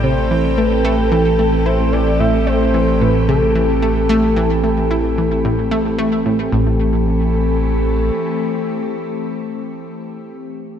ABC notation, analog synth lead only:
X:1
M:4/4
L:1/8
Q:1/4=111
K:Am
V:1 name="Analog synth lead"
c2 B2 A2 c d | e c2 B A4- | A6 z2 | z8 |
z8 |]